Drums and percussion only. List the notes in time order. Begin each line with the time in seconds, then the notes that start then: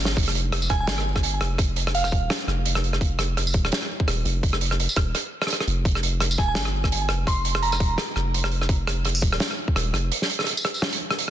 0.00 closed hi-hat
0.05 snare
0.17 kick, closed hi-hat
0.23 closed hi-hat
0.28 cross-stick, closed hi-hat
0.32 closed hi-hat
0.35 closed hi-hat
0.52 cross-stick, closed hi-hat
0.62 tambourine
0.69 kick, cross-stick, closed hi-hat
0.87 snare, closed hi-hat
0.98 cross-stick
1.16 kick, cross-stick
1.23 closed hi-hat
1.41 cross-stick, closed hi-hat
1.58 kick, cross-stick, closed hi-hat
1.76 closed hi-hat
1.87 cross-stick
1.94 closed hi-hat
2.04 cross-stick, tambourine
2.12 kick, closed hi-hat
2.30 cross-stick, snare, closed hi-hat
2.48 cross-stick
2.65 closed hi-hat
2.75 cross-stick
2.84 closed hi-hat
2.93 cross-stick
3.01 kick, closed hi-hat
3.19 cross-stick, closed hi-hat
3.37 cross-stick, closed hi-hat
3.47 tambourine
3.53 kick, closed hi-hat
3.65 cross-stick
3.72 snare, closed hi-hat
3.82 cross-stick
4.00 kick
4.08 cross-stick, closed hi-hat
4.25 closed hi-hat
4.43 kick, closed hi-hat
4.53 cross-stick
4.61 closed hi-hat
4.71 cross-stick
4.80 closed hi-hat
4.89 tambourine
4.96 kick, cross-stick, closed hi-hat
5.15 cross-stick, closed hi-hat
5.42 cross-stick
5.47 cross-stick, closed hi-hat
5.53 cross-stick
5.60 cross-stick
5.68 closed hi-hat
5.85 kick, closed hi-hat
5.95 cross-stick
6.03 closed hi-hat
6.20 cross-stick, closed hi-hat
6.31 tambourine
6.38 kick, cross-stick, closed hi-hat
6.55 snare, closed hi-hat
6.65 cross-stick
6.84 kick, cross-stick
6.92 closed hi-hat
7.09 cross-stick, closed hi-hat
7.27 kick, cross-stick, closed hi-hat
7.45 closed hi-hat
7.55 cross-stick
7.62 closed hi-hat
7.72 cross-stick, tambourine
7.80 kick, closed hi-hat
7.98 cross-stick, snare, closed hi-hat
8.16 cross-stick
8.34 closed hi-hat
8.44 cross-stick
8.51 closed hi-hat
8.62 cross-stick
8.69 kick, closed hi-hat
8.87 cross-stick, closed hi-hat
9.05 cross-stick, closed hi-hat
9.15 tambourine
9.22 kick, closed hi-hat
9.32 cross-stick
9.40 snare, closed hi-hat
9.51 cross-stick
9.68 kick
9.76 cross-stick, closed hi-hat
9.94 cross-stick, closed hi-hat
10.12 closed hi-hat
10.22 snare
10.29 closed hi-hat
10.39 cross-stick
10.41 cross-stick
10.44 cross-stick, closed hi-hat
10.47 cross-stick
10.50 cross-stick
10.53 cross-stick
10.57 tambourine
10.65 cross-stick, closed hi-hat
10.74 tambourine
10.82 cross-stick, snare
10.92 closed hi-hat
11.11 cross-stick
11.19 closed hi-hat